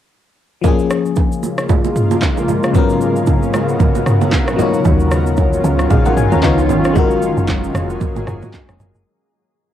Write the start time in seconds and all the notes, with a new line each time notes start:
0.61 C#3 F3 G#3 A#3 F4, kick, low conga, shaker
0.66 C#4 G#4
0.79 shaker
0.90 cross-stick, shaker
1.06 shaker
1.16 kick, high bongo, shaker
1.32 shaker
1.43 low bongo, shaker
1.58 cross-stick, shaker
1.69 kick, low conga, shaker
1.85 low bongo, shaker
1.96 mid tom, shaker
2.11 low bongo, shaker
2.22 kick, clap, high bongo, shaker
2.37 high bongo, shaker
2.48 low conga, shaker
2.63 cross-stick, shaker
2.72 G#2 F#3 B3 F#4 A#4, kick, low conga, shaker
2.77 C#4 A#4
2.89 shaker
3.01 shaker
3.16 shaker
3.26 kick, high bongo, shaker
3.43 shaker
3.54 cross-stick, low bongo, shaker
3.69 shaker
3.80 kick, low conga, shaker
3.95 low bongo, shaker
4.06 cross-stick, mid tom, shaker
4.21 low bongo, shaker
4.32 kick, clap, high bongo, shaker
4.48 cross-stick, high bongo, shaker
4.56 D#3 F#3 C#4 D#4 F4, low conga, shaker
4.60 F4 C#5
4.74 shaker
4.85 D#2, kick, low conga, shaker
5.00 shaker
5.11 cross-stick, shaker
5.27 shaker
5.37 kick, high bongo, shaker
5.53 shaker
5.64 C#2, low bongo, shaker
5.79 cross-stick, shaker
5.90 A#1 G#4 F5, kick, low conga, shaker
6.06 A#4 F#5, low bongo, shaker
6.17 G#5, mid tom, shaker
6.32 D#2 C#5 A#5, low bongo, shaker
6.42 C#2 B3 D#4 F4 C#5, kick, clap, high bongo, shaker
6.58 high bongo, shaker
6.69 G#1, low conga, shaker
6.85 cross-stick, shaker
6.93 F#1 F#3 G#3 A#3 F4 G#4, kick, low conga, shaker
6.97 F#4 A#4
7.11 shaker
7.22 shaker
7.37 F#1, shaker
7.48 kick, clap, high bongo, shaker
7.64 shaker
7.75 F1, cross-stick, low bongo, shaker
7.90 high bongo, shaker
8.01 kick, low conga, shaker
8.16 G#1, low bongo, shaker
8.27 F#1, cross-stick, mid tom, shaker
8.42 mid tom, low bongo, shaker
8.54 kick, clap, high bongo, shaker
8.69 F1, cross-stick, high bongo, shaker
8.80 F#1, low conga, shaker
8.95 F#1, shaker